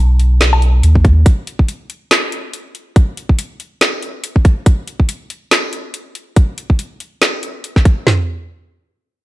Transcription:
0.00 B1
0.20 closed hi-hat
0.41 snare, closed hi-hat
0.53 low woodblock
0.62 closed hi-hat
0.83 D#2, closed hi-hat
0.95 kick
1.05 kick, closed hi-hat
1.26 kick, closed hi-hat
1.47 closed hi-hat
1.59 kick
1.68 closed hi-hat
1.90 closed hi-hat
2.11 snare, closed hi-hat
2.32 closed hi-hat
2.53 closed hi-hat
2.75 closed hi-hat
2.96 kick, closed hi-hat
3.17 closed hi-hat
3.29 kick
3.39 closed hi-hat
3.60 closed hi-hat
3.81 snare, closed hi-hat
4.03 closed hi-hat
4.24 closed hi-hat
4.36 kick
4.45 kick, closed hi-hat
4.66 kick, closed hi-hat
4.88 closed hi-hat
5.00 kick
5.09 closed hi-hat
5.30 closed hi-hat
5.51 snare, closed hi-hat
5.73 closed hi-hat
5.94 closed hi-hat
6.15 closed hi-hat
6.36 kick, closed hi-hat
6.58 closed hi-hat
6.70 kick
6.79 closed hi-hat
7.00 closed hi-hat
7.22 snare, closed hi-hat
7.43 closed hi-hat
7.64 closed hi-hat
7.76 kick, snare
7.85 kick, closed hi-hat
8.07 snare, floor tom

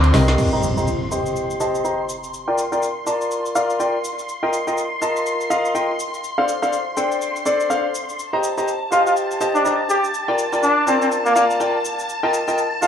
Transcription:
Already playing: D2 C4 F4 A4 C5 C6
0.04 closed hi-hat
0.14 C2 C4 G4 A#4 D#5, snare, open hi-hat
0.28 snare, closed hi-hat
0.38 C6, crash, impact, cabasa
0.53 G4 C5 D#5 A#5
0.63 cabasa
0.77 G4 C5 D#5 A#5, cabasa
0.87 cabasa
1.11 G4 C5 D#5 C6, cabasa
1.26 cabasa
1.36 cabasa
1.50 cabasa
1.60 G4 C5 D#5 A5, cabasa
1.75 cabasa
1.84 G4 C5 D#5 A#5, cabasa
2.09 cabasa
2.24 cabasa
2.34 cabasa
2.48 F4 A#4 D5 G5
2.58 cabasa
2.72 F4 A#4 D5 G5, cabasa
2.82 cabasa
3.06 F4 A#4 D5 A5, cabasa
3.21 cabasa
3.31 cabasa
3.46 cabasa
3.55 F4 A#4 D5 F5, cabasa
3.70 cabasa
3.80 F4 A#4 D5 G5, cabasa
4.04 cabasa
4.19 cabasa
4.29 cabasa
4.43 F4 A#4 D#5 G5
4.53 cabasa
4.67 F4 A#4 D#5 G5, cabasa
4.78 cabasa
5.02 F4 A#4 D#5 A5, cabasa
5.16 cabasa
5.26 cabasa
5.41 cabasa
5.50 F4 A#4 D#5 F5, cabasa
5.65 cabasa
5.75 F4 A#4 D#5 G5, cabasa
6.00 cabasa
6.14 cabasa
6.24 cabasa
6.38 D4 A4 C5 F5
6.48 cabasa
6.62 D4 A4 C5 F5, cabasa
6.73 cabasa
6.97 D4 A4 C5 G5, cabasa
7.12 cabasa
7.22 cabasa
7.36 cabasa
7.46 D4 A4 C5 D5, cabasa
7.60 cabasa
7.70 D4 A4 C5 F5, cabasa
7.95 cabasa
8.09 cabasa
8.19 A5, cabasa
8.33 G4 C5 D#5 A#5
8.43 cabasa
8.57 G4 C5 D#5 A#5, cabasa
8.68 cabasa
8.92 F4 G4 C5 D#5 C6, cabasa
9.06 F4, cabasa
9.17 cabasa
9.31 cabasa
9.41 G4 C5 D#5 A5, cabasa
9.55 D4, cabasa
9.65 D4 G4 C5 D#5 A#5, cabasa
9.89 G4, cabasa
10.04 cabasa
10.14 cabasa
10.28 F4 A#4 D5 G5
10.38 cabasa
10.52 F4 A#4 D5 G5, cabasa
10.62 D4, cabasa
10.87 C4 F4 A#4 D5 A5, cabasa
11.01 C4, cabasa
11.12 cabasa
11.26 A#3, cabasa
11.36 A#3 F4 A#4 D5 F5, cabasa
11.51 cabasa
11.60 F4 A#4 D5 G5, cabasa
11.85 cabasa
11.99 cabasa
12.09 cabasa
12.23 F4 A#4 D#5 G5
12.34 cabasa
12.48 F4 A#4 D#5 G5, cabasa
12.58 cabasa
12.82 F4 A#4 D#5 A5, cabasa

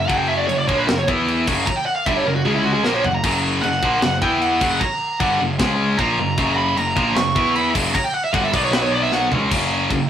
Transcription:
0.07 F#1 F#2 C#3 F#3 F#5, kick, crash
0.18 G5
0.28 E5
0.37 D5
0.48 F#1 F#2 C#3 C#5, crash
0.58 D5
0.67 A#1 A#2 F3 A#3 C#5, kick
0.77 B4
0.88 F#1 F#2 C#3 A#4, snare, crash
0.98 C#5
1.08 E2 E3 B3 E4, kick
1.28 crash
1.48 F#1 F#2 C#3 F#3, kick, crash
1.66 A#5, muted picked electric bass stroke, muted distorted electric guitar stroke, kick, crash
1.76 G5
1.86 F#5
1.96 F5
2.06 G1 G2 D3 G3 E5, kick, crash
2.17 C#5
2.26 F#1 F#2 C#3 A#4
2.35 F#4
2.45 C#2 C#3 G#3 C#4 G#4, high tom
2.54 E4
2.65 F#4
2.73 G#4
2.84 A#1 A#2 F3 A#3 A#4, snare
2.94 C#5
3.04 F#1 F#2 C#3 F#5, floor tom
3.14 A#5
3.24 F#1 F#2 C#3 F#3 A#5, kick, crash
3.62 F#1 F#2 C#3 F#5, crash
3.83 A#1 A#2 F3 A#3, kick
4.02 F#1 F#2 C#3, snare, crash
4.22 E2 E3 B3 E4 G5, kick
4.41 F#5, crash
4.61 F#1 F#2 C#3 F#3, kick, crash
4.80 A#5, muted picked electric bass stroke, muted distorted electric guitar stroke, kick, crash
5.20 G1 G2 D3 G3 F#5, kick, crash
5.40 F#1 F#2 C#3
5.59 C#2 C#3 G#3 C#4, kick, snare, crash
5.98 A#1 A#2 F3 A#3 A#5, kick, crash
6.18 F#1 F#2 C#3
6.38 F#1 F#2 C#3 F#3, kick, crash
6.56 B5
6.77 F#1 F#2 C#3 A#5, crash
6.96 A#1 A#2 F3 A#3, kick
7.16 F#1 F#2 C#3 C#6, snare, crash
7.35 E2 E3 B3 E4, kick
7.56 B5, crash
7.74 F#1 F#2 C#3 F#3, kick, crash
7.95 A#5, muted distorted electric guitar stroke, muted picked electric bass stroke, kick, crash
8.04 G5
8.14 F#5
8.24 E5
8.33 G1 G2 D3 G3 F#5, kick, crash
8.44 E5
8.53 B1 B2 F#3 B3 D5, kick, crash
8.64 C#5
8.72 B4, snare, crash
8.82 C#5
8.92 D5
9.02 E5
9.12 F#5, snare
9.31 C#2 C#3 G#3 C#4, floor tom
9.51 F#1 F#2 C#3 F#3, kick, crash
9.90 F#1 F#2 C#3, kick, crash

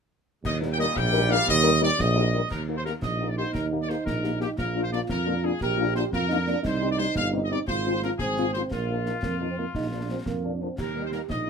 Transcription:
0.43 D#2 A#2 G3 D#5, concert bass drum, snare, crash
0.61 G3 D#4 A#4, snare
0.72 G5
0.78 G3 D#4 A#4 D#5, snare
0.96 A#1 G5, concert bass drum, snare
1.12 G3 D#4 A#4
1.29 G3 D#4 A#4 F5, snare
1.48 D#2 D#5, concert bass drum, snare
1.63 G3 D#4 A#4
1.80 G3 D#4 A#4 D5
1.99 A#1 D#5, concert bass drum, snare
2.15 G3 D#4 A#4
2.33 G3 D#4 A#4
2.50 D#2 A#4, concert bass drum, snare, crash
2.68 A#3 D#4 G4
2.77 C5
2.84 A#3 D#4 G4 A#4, snare
3.01 A#1 D#4 D#5, concert bass drum, snare
3.20 A#3 D#4 G4
3.28 D5
3.36 A#3 D#4 G4 C5
3.53 D#2 A#4, concert bass drum, snare
3.72 A#3 D#4 G4
3.82 D5
3.88 A#3 D#4 G4 C5, snare
4.05 A#1 A#4, concert bass drum, snare
4.23 A#3 D#4 G4, snare
4.41 A#3 D#4 G4, snare
4.57 A#1 F4 A#4, concert bass drum, snare
4.75 A#3 D4 F4
4.83 C5
4.92 A#3 D4 F4 D5, snare
5.09 F2 A#4, concert bass drum, snare
5.26 A#3 D4 F4
5.43 A#3 D4 F4 G#4
5.61 A#1 G4 A#4, concert bass drum, snare
5.77 A#3 D4 F4
5.95 A#3 D4 F4 C5, snare
6.11 F2 F4 A#4, concert bass drum, snare
6.28 A#3 D4 D#4 F4, snare
6.46 A#3 D4 F4, snare
6.63 C2 D#4 C5, concert bass drum, snare, crash
6.81 G3 C4 D#4
6.91 D5
6.98 G3 C4 D#4 C5, snare
7.15 G1 F5, concert bass drum, snare
7.33 G3 C4 D#4
7.44 D#5
7.51 G3 C4 D#4 D5
7.67 G#1 F4 C5, concert bass drum, snare
7.86 F3 C4 F4
8.02 F3 C4 F4 A#4, snare
8.18 G#1 C4 G#4, concert bass drum, snare
8.37 F3 C4 F4, snare
8.53 F3 C4 F4 C5, snare
8.71 A#1 A#3 F4, concert bass drum, snare
8.90 F3 A#3 D#4
9.06 F3 A#3 D#4, snare
9.23 F2 A#3, concert bass drum, snare
9.40 F3 A#3 D#4
9.50 C4
9.58 F3 A#3 D#4
9.74 A#1 D#4, concert bass drum, snare
9.92 F3 A#3 D4
10.02 D4
10.10 F3 A#3 C4 D4
10.26 F2 A#3, concert bass drum, snare
10.44 F3 A#3 D4
10.54 D4
10.61 F3 A#3 C4 D4
10.78 D#2 G4 A#4, concert bass drum, snare, crash
10.95 G3 A#3 D#4
11.05 C5
11.11 G3 A#3 D#4 A#4, snare
11.29 A#1 D#4 D#5, concert bass drum, snare
11.47 G3 A#3 D#4

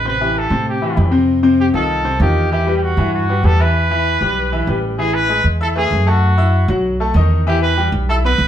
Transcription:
Already playing: A1
0.05 C3 C4 B4 C5
0.21 E3 E4 G4
0.38 A4
0.50 A2 C3 C4 C5
0.69 G4
0.82 E3 E4 G4
0.96 F2 E3 E4 G4
1.11 C3 C4 C5
1.43 C3 C4 C5
1.60 G4
1.73 C2 D#3 D#4 F4 A4
2.04 C3 C4 C5
2.20 E2 D#3 D#4 F4 G4
2.52 E3 E4 G4 E5
2.67 G3 G4 B4
2.77 G4
2.83 F#4
2.97 G2 E3 E4 E5
3.14 F#4
3.29 G3 G4 B4
3.43 E2 G3 G4 A4 B4
3.59 E3 E4 B4 E5
3.91 E3 E4 E5
4.21 B1 G3 G4 B4
4.52 E3 E4 E5
4.67 A1 G3 G4 B4
4.98 E3 E4 G#4 E5
5.15 B4
5.29 G#3 G#4 G#5
5.44 E2
5.61 E4 A4 E5 E6
5.75 A3 G#4 B4 E5
5.91 F#2
6.06 A3 F#4 A4 A5
6.37 E4 E5 E6
6.68 B1 F#3 F#4 F#5
7.00 A3 A4 A5
7.14 E2 D#3 D#4 D#5
7.47 E3 E4 G4 E5
7.62 B4
7.77 G3 G4 G5
7.92 B1
8.09 E4 A4 E5 E6
8.25 B3 B4 B5
8.38 B1

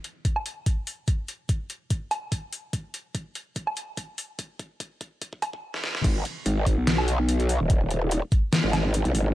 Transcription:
0.04 closed hi-hat
0.25 kick, closed hi-hat
0.36 low woodblock
0.46 closed hi-hat
0.66 kick, closed hi-hat
0.87 open hi-hat
1.08 kick, closed hi-hat
1.28 closed hi-hat
1.49 kick, closed hi-hat
1.70 closed hi-hat
1.90 kick, closed hi-hat
2.11 closed hi-hat, low woodblock
2.32 kick, closed hi-hat
2.53 open hi-hat
2.73 kick, closed hi-hat
2.94 closed hi-hat
3.15 kick, closed hi-hat
3.35 closed hi-hat
3.56 kick, closed hi-hat
3.67 low woodblock
3.77 closed hi-hat
3.97 kick, closed hi-hat
4.18 open hi-hat
4.39 kick, closed hi-hat
4.59 kick, closed hi-hat
4.80 kick, closed hi-hat
5.01 kick, closed hi-hat
5.22 kick, closed hi-hat
5.33 kick
5.42 kick, closed hi-hat, low woodblock
5.53 kick
5.74 snare
5.84 snare
5.95 snare
6.04 G#1, kick, closed hi-hat, crash
6.25 closed hi-hat
6.46 G#1, closed hi-hat
6.66 kick, closed hi-hat
6.78 B1
6.87 snare, closed hi-hat
6.98 low woodblock
7.08 closed hi-hat
7.29 closed hi-hat
7.40 closed hi-hat
7.49 open hi-hat
7.60 D#1
7.70 kick, closed hi-hat
7.91 closed hi-hat
8.11 closed hi-hat
8.32 kick, closed hi-hat
8.53 snare, closed hi-hat
8.64 G#1
8.73 snare, closed hi-hat, low woodblock
8.94 closed hi-hat
9.05 B1, closed hi-hat
9.15 G#1, open hi-hat

